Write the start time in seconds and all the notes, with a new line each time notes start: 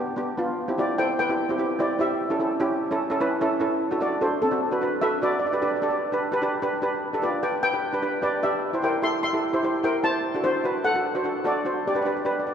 Already playing: G4
0.16 B3 D4 G4
0.37 B3 D4 F4
0.68 C4 E4 G4
0.78 C4 E4 F4 G4 D5
0.98 C4 E4 A4 C5 G5
1.19 B4 G5
1.29 C4 E4 G4
1.49 C4 E4 G4
1.58 C4 E4 G4
1.79 C4 E4 G4 D5
1.99 C4 E4 G4 E5
2.30 C#4 E4 A4
2.39 C#4 E4 A4
2.60 C#4 E4 G4
2.91 C#4 E4 A4
3.10 C#4 E4 A4
3.20 C#4 E4 B4
3.41 C#4 E4 A4
3.60 C#4 E4 A4
3.91 D4 F#4 A4
4.00 D4 F#4 A4 D5
4.21 D4 F#4 A4 C5
4.42 C4 A4
4.51 D4 F#4 A4
4.71 D4 F#4 B4
4.81 D4 F#4 B4
5.01 D4 F#4 A4 B4 E5
5.21 D4 F#4 B4 D5
5.31 D5
5.39 D5
5.46 D5
5.52 D4 G4 B4 D5
5.62 D4 G4 B4 D5
5.68 D5
5.76 D5
5.82 D4 G4 A4 D5
5.90 D5
6.12 D4 G4 B4
6.32 D4 G4 B4
6.42 D4 G4 B4
6.62 D4 G4 B4
6.82 D4 G4 B4
7.13 D4 G4 A4
7.22 D4 F4 G4 B4 D5
7.43 D4 G4 B4 D5 G5
7.63 B4 G5
7.73 D4 G4 B4
7.93 D4 G4 B4
8.02 D4 G4 B4
8.22 D4 G4 B4 D5
8.43 D4 G4 D5 E5
8.73 E4 G4 C5
8.82 E4 G4 A#4 C5 G5
9.02 E4 G4 A4 E5 C6
9.23 E5 C6
9.33 E4 G4 A4
9.53 E4 G4 C5
9.63 E4 G4 C5
9.83 E4 G4 A#4 C5 G5
10.03 E4 G4 C5 A5
10.34 D4 F#4 A4
10.44 D4 E4 F#4 C5
10.64 D4 F#4 B4
10.84 A4 F#5
10.94 D4 F#4 A4
11.15 D4 F#4 C5
11.24 D4 F#4 A4
11.44 D4 F#4 A4 D5
11.65 D4 F#4 C5
11.87 G4 D5
11.94 D4 G4 B4 D5
12.02 D4 G4 D5
12.07 B4 D5
12.17 D5
12.25 D4 G4 B4 D5
12.32 D5
12.39 D5
12.47 D5